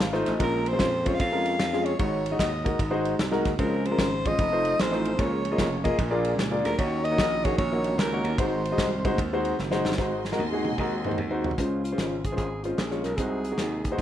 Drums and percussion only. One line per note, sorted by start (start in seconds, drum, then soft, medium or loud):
0.00 snare loud
0.00 ride medium
0.14 snare soft
0.26 snare soft
0.26 ride medium
0.40 kick loud
0.40 ride medium
0.66 ride medium
0.79 kick medium
0.79 snare loud
0.79 ride medium
1.06 kick loud
1.06 ride medium
1.20 kick loud
1.20 ride medium
1.46 ride medium
1.59 snare loud
1.59 ride medium
1.73 snare soft
1.86 ride medium
1.99 kick loud
1.99 ride medium
2.26 ride medium
2.39 kick medium
2.39 snare medium
2.39 ride medium
2.66 kick loud
2.66 ride medium
2.79 kick loud
2.79 ride medium
3.05 ride medium
3.19 snare loud
3.19 ride medium
3.32 snare soft
3.45 kick loud
3.45 snare soft
3.45 ride medium
3.59 kick loud
3.59 ride medium
3.85 ride medium
3.99 kick medium
3.99 snare loud
3.99 ride medium
4.26 kick loud
4.26 ride medium
4.39 kick loud
4.39 ride medium
4.65 ride medium
4.79 snare loud
4.79 ride medium
4.93 snare soft
5.05 ride medium
5.19 kick loud
5.19 ride medium
5.45 ride medium
5.58 kick medium
5.58 snare loud
5.58 ride medium
5.85 kick loud
5.85 ride medium
5.99 kick loud
5.99 ride medium
6.25 ride medium
6.39 snare loud
6.39 ride medium
6.65 snare soft
6.65 ride medium
6.79 kick loud
6.79 ride medium
7.05 ride medium
7.18 kick medium
7.18 snare loud
7.18 ride medium
7.45 kick loud
7.45 ride medium
7.58 kick loud
7.58 ride medium
7.84 ride medium
7.99 snare loud
7.99 ride medium
8.25 ride medium
8.38 kick loud
8.38 ride medium
8.65 ride medium
8.78 kick medium
8.78 snare loud
8.78 ride medium
9.05 kick loud
9.05 ride medium
9.18 kick loud
9.18 ride medium
9.45 ride medium
9.59 snare medium
9.72 snare medium
9.85 snare medium
9.92 snare loud
9.98 kick loud
9.98 snare soft
10.25 snare medium
10.32 snare medium
10.39 high tom medium
10.65 high tom medium
10.72 mid tom medium
10.78 kick medium
10.78 mid tom medium
11.05 mid tom medium
11.11 mid tom medium
11.18 mid tom medium
11.44 floor tom loud
11.51 floor tom medium
11.58 kick medium
11.58 closed hi-hat medium
11.85 closed hi-hat medium
11.98 snare medium
11.98 closed hi-hat medium
12.24 kick medium
12.24 closed hi-hat medium
12.38 kick medium
12.38 closed hi-hat medium
12.64 closed hi-hat medium
12.78 snare loud
12.78 closed hi-hat medium
12.91 snare soft
13.04 snare soft
13.04 closed hi-hat medium
13.18 kick loud
13.18 closed hi-hat medium
13.45 closed hi-hat medium
13.58 snare medium
13.58 closed hi-hat medium
13.85 kick medium
13.85 closed hi-hat medium
13.98 kick loud
13.98 closed hi-hat medium